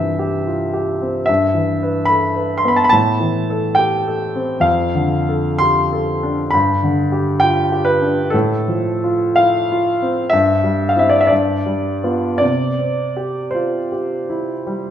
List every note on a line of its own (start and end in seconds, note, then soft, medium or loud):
0.00 1.29 G2 soft
0.00 1.31 E3 soft
0.00 1.02 C4 soft
0.00 0.47 F4 soft
0.00 0.19 G4 soft
0.00 0.45 E5 medium
0.00 1.31 G5 medium
0.19 0.63 G4 soft
0.47 0.74 F4 soft
0.74 1.18 G4 soft
1.02 1.29 C4 soft
1.26 2.89 G2 soft
1.26 2.08 E5 medium
1.54 1.98 E3 soft
1.83 2.26 B4 soft
2.05 2.36 A4 soft
2.05 2.57 B5 medium
2.36 2.81 B4 soft
2.58 2.67 C6 medium
2.65 2.93 B3 soft
2.65 2.76 B5 medium
2.76 2.84 A5 medium
2.84 2.93 B5 medium
2.89 4.62 A2 medium
2.89 3.77 A5 medium
3.20 3.67 E3 soft
3.50 3.96 A4 soft
3.75 4.07 G4 soft
3.75 4.64 G5 medium
4.07 4.54 A4 soft
4.35 4.65 C4 soft
4.60 6.48 F2 medium
4.60 5.60 F5 medium
4.95 5.49 D3 soft
5.29 5.81 A4 soft
5.58 5.94 G4 soft
5.58 6.52 C6 medium
5.93 6.42 A4 soft
6.23 6.54 D4 soft
6.51 8.29 G2 medium
6.51 7.41 B5 medium
6.83 7.31 D3 soft
7.12 7.60 G4 soft
7.40 7.72 F4 soft
7.40 7.85 G5 medium
7.72 8.20 G4 soft
7.85 8.32 B4 medium
8.02 8.33 D4 soft
8.30 10.30 A2 medium
8.30 9.37 A4 medium
8.68 9.26 F3 soft
9.04 9.59 F4 soft
9.36 9.72 E4 soft
9.36 10.32 F5 medium
9.72 10.22 F4 soft
10.02 10.33 C4 soft
10.30 11.27 G2 medium
10.30 10.88 E5 medium
10.64 11.16 G3 soft
10.89 10.99 F5 medium
10.96 11.27 C4 soft
10.96 11.27 E4 soft
10.96 11.10 E5 medium
11.09 11.20 D5 medium
11.21 11.31 E5 medium
11.27 12.38 G2 soft
11.27 12.36 D5 medium
11.66 12.26 G3 soft
12.04 12.38 B3 soft
12.04 12.38 F4 soft
12.38 14.63 C3 soft
12.38 13.53 D5 medium
12.79 13.39 C4 soft
13.17 13.77 G4 soft
13.51 13.92 F4 soft
13.51 14.90 C5 medium
13.92 14.52 G4 soft
14.30 14.89 E4 soft
14.67 14.90 G3 soft